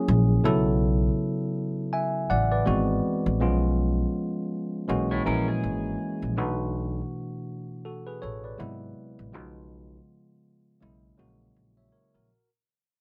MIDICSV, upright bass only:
0, 0, Header, 1, 2, 480
1, 0, Start_track
1, 0, Tempo, 740741
1, 284, Time_signature, 4, 2, 24, 8
1, 8430, End_track
2, 0, Start_track
2, 0, Title_t, "Upright bass"
2, 0, Program_c, 0, 32
2, 54, Note_on_c, 0, 34, 97
2, 254, Note_off_c, 0, 34, 0
2, 293, Note_on_c, 0, 35, 89
2, 698, Note_off_c, 0, 35, 0
2, 1493, Note_on_c, 0, 33, 69
2, 1693, Note_off_c, 0, 33, 0
2, 1732, Note_on_c, 0, 32, 82
2, 1933, Note_off_c, 0, 32, 0
2, 2114, Note_on_c, 0, 33, 81
2, 2212, Note_off_c, 0, 33, 0
2, 2212, Note_on_c, 0, 35, 91
2, 2617, Note_off_c, 0, 35, 0
2, 3171, Note_on_c, 0, 35, 84
2, 3372, Note_off_c, 0, 35, 0
2, 3413, Note_on_c, 0, 34, 81
2, 3614, Note_off_c, 0, 34, 0
2, 3651, Note_on_c, 0, 32, 80
2, 3853, Note_off_c, 0, 32, 0
2, 4032, Note_on_c, 0, 34, 69
2, 4132, Note_off_c, 0, 34, 0
2, 4132, Note_on_c, 0, 35, 76
2, 4537, Note_off_c, 0, 35, 0
2, 5333, Note_on_c, 0, 33, 67
2, 5534, Note_off_c, 0, 33, 0
2, 5571, Note_on_c, 0, 32, 79
2, 5772, Note_off_c, 0, 32, 0
2, 5955, Note_on_c, 0, 33, 73
2, 6055, Note_off_c, 0, 33, 0
2, 6055, Note_on_c, 0, 35, 80
2, 6459, Note_off_c, 0, 35, 0
2, 7013, Note_on_c, 0, 35, 82
2, 7214, Note_off_c, 0, 35, 0
2, 7252, Note_on_c, 0, 34, 74
2, 7453, Note_off_c, 0, 34, 0
2, 7493, Note_on_c, 0, 34, 72
2, 7694, Note_off_c, 0, 34, 0
2, 7873, Note_on_c, 0, 34, 71
2, 7954, Note_off_c, 0, 34, 0
2, 8430, End_track
0, 0, End_of_file